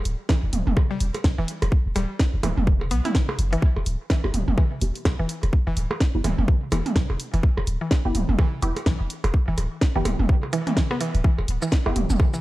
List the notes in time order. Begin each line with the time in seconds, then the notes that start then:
0.05 D1, open hi-hat
0.29 E3, kick, snare, percussion blips
0.43 F#1
0.53 D1, mid tom, open hi-hat
0.67 E1, mid tom
0.77 kick, percussion blips
0.91 G3
1.00 E1, open hi-hat
1.14 open hi-hat, percussion blips
1.24 B1, kick, snare
1.38 E1 E3
1.48 open hi-hat
1.62 E1, open hi-hat, percussion blips
1.72 kick
1.86 E1
1.96 D1 G3, open hi-hat, percussion blips
2.19 kick, snare
2.34 F#1
2.43 D1 E3, mid tom, open hi-hat, percussion blips
2.57 E1, mid tom
2.67 kick
2.81 percussion blips
2.91 B1 B3, open hi-hat
3.05 E4, mid tom, open hi-hat
3.15 kick, snare
3.29 percussion blips
3.39 F#1, open hi-hat
3.53 E3, open hi-hat
3.62 kick
3.76 E1, percussion blips
3.86 D1, open hi-hat
4.10 E3, kick, snare
4.24 F#1 B3 E4 G4, percussion blips
4.34 D1, mid tom, open hi-hat
4.48 E1, mid tom
4.58 E3, kick, percussion blips
4.81 E1 B3 E4 G4, open hi-hat
4.95 open hi-hat
5.05 B1, kick, snare, percussion blips
5.19 E1 E3
5.29 open hi-hat
5.43 E1, open hi-hat, percussion blips
5.53 kick
5.67 E1 E3
5.77 D1, open hi-hat
5.91 percussion blips
6.00 kick, snare
6.15 F#1 B3 E4 G4
6.24 D1 E3, mid tom, open hi-hat, percussion blips
6.38 E1, mid tom
6.48 kick
6.72 E1 E3 B3 E4 G4, open hi-hat, percussion blips
6.86 mid tom, open hi-hat
6.96 B1, kick, snare
7.10 E1, percussion blips
7.20 open hi-hat
7.34 E1 E3, open hi-hat
7.43 kick
7.57 E1, percussion blips
7.67 D1, open hi-hat
7.81 E3
7.91 kick, snare, percussion blips
8.05 F#1 B3 E4 G4
8.15 D1, mid tom, open hi-hat
8.29 E1, mid tom
8.39 E3, kick, percussion blips
8.62 E1 B3 E4 G4, open hi-hat
8.76 open hi-hat, percussion blips
8.86 B1 E3, kick, snare
9.00 E1
9.10 open hi-hat
9.24 E1, open hi-hat, percussion blips
9.34 kick
9.48 E1 E3
9.58 D1, open hi-hat, percussion blips
9.81 kick, snare
9.95 F#1 E3 B3 E4 G4
10.05 D1, mid tom, open hi-hat, percussion blips
10.19 E1, mid tom
10.29 kick
10.43 percussion blips
10.53 E3, open hi-hat
10.67 E3, mid tom, open hi-hat
10.77 E3, kick, snare
10.91 B3, percussion blips
11.01 E3, open hi-hat
11.15 D1, open hi-hat
11.24 E3, kick
11.38 E1, percussion blips
11.48 D1, open hi-hat
11.62 E3, shaker
11.72 kick, snare
11.86 F#1 B3 E4 G4, percussion blips
11.96 D1, mid tom, open hi-hat
12.10 E1, mid tom, shaker
12.20 kick, percussion blips
12.34 E3, shaker